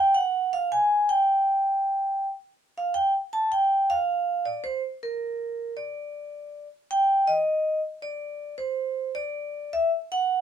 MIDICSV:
0, 0, Header, 1, 2, 480
1, 0, Start_track
1, 0, Tempo, 563380
1, 99, Time_signature, 4, 2, 24, 8
1, 8869, End_track
2, 0, Start_track
2, 0, Title_t, "Vibraphone"
2, 0, Program_c, 0, 11
2, 0, Note_on_c, 0, 79, 117
2, 104, Note_off_c, 0, 79, 0
2, 123, Note_on_c, 0, 78, 88
2, 429, Note_off_c, 0, 78, 0
2, 452, Note_on_c, 0, 77, 88
2, 587, Note_off_c, 0, 77, 0
2, 613, Note_on_c, 0, 80, 98
2, 913, Note_off_c, 0, 80, 0
2, 930, Note_on_c, 0, 79, 91
2, 1919, Note_off_c, 0, 79, 0
2, 2365, Note_on_c, 0, 77, 81
2, 2429, Note_off_c, 0, 77, 0
2, 2507, Note_on_c, 0, 79, 82
2, 2652, Note_off_c, 0, 79, 0
2, 2837, Note_on_c, 0, 81, 90
2, 2972, Note_off_c, 0, 81, 0
2, 2997, Note_on_c, 0, 79, 86
2, 3322, Note_on_c, 0, 77, 87
2, 3324, Note_off_c, 0, 79, 0
2, 3795, Note_on_c, 0, 74, 79
2, 3807, Note_off_c, 0, 77, 0
2, 3931, Note_off_c, 0, 74, 0
2, 3951, Note_on_c, 0, 72, 82
2, 4095, Note_off_c, 0, 72, 0
2, 4285, Note_on_c, 0, 70, 78
2, 4873, Note_off_c, 0, 70, 0
2, 4914, Note_on_c, 0, 74, 74
2, 5679, Note_off_c, 0, 74, 0
2, 5885, Note_on_c, 0, 79, 97
2, 6198, Note_on_c, 0, 75, 85
2, 6208, Note_off_c, 0, 79, 0
2, 6638, Note_off_c, 0, 75, 0
2, 6836, Note_on_c, 0, 74, 82
2, 7273, Note_off_c, 0, 74, 0
2, 7309, Note_on_c, 0, 72, 79
2, 7749, Note_off_c, 0, 72, 0
2, 7795, Note_on_c, 0, 74, 87
2, 8280, Note_off_c, 0, 74, 0
2, 8291, Note_on_c, 0, 76, 92
2, 8431, Note_off_c, 0, 76, 0
2, 8620, Note_on_c, 0, 78, 86
2, 8869, Note_off_c, 0, 78, 0
2, 8869, End_track
0, 0, End_of_file